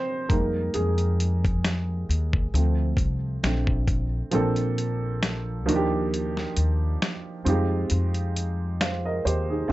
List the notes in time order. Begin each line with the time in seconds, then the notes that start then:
Already playing: F3 G3 C4 D4 D#4 C5 D5 D#5
0.29 F2 G3 G#3 A#3 D#4 A#4, kick, closed hi-hat
0.74 F2 G#3 G#4, closed hi-hat
0.98 closed hi-hat
1.20 closed hi-hat
1.45 kick, closed hi-hat
1.65 finger snap, snare, closed hi-hat
2.09 D#2, closed hi-hat
2.33 kick
2.54 D2 F3 A3 C4, closed hi-hat
2.97 C2, kick, closed hi-hat
3.43 A#1 D3 A3 C4, finger snap, snare, closed hi-hat
3.67 kick
3.88 kick, closed hi-hat
4.31 A#1 F3 A#3 C4 D4 A4, closed hi-hat
4.56 closed hi-hat
4.78 closed hi-hat
5.23 finger snap, snare, closed hi-hat
5.66 D#2 F3 A#3 D4 D#4 F#4, closed hi-hat
5.76 G4
6.14 closed hi-hat
6.37 snare
6.57 D#2, closed hi-hat
7.02 finger snap, snare, closed hi-hat
7.44 F2 G3 C4 D#4 F4 G4, closed hi-hat
7.51 G#3
7.90 F2, closed hi-hat
8.14 closed hi-hat
8.37 closed hi-hat
8.81 C5 F5, finger snap, snare, closed hi-hat
9.05 A#4 D#5
9.25 D#2 G4 C5, closed hi-hat
9.50 D#4 G#4
9.68 A3 C4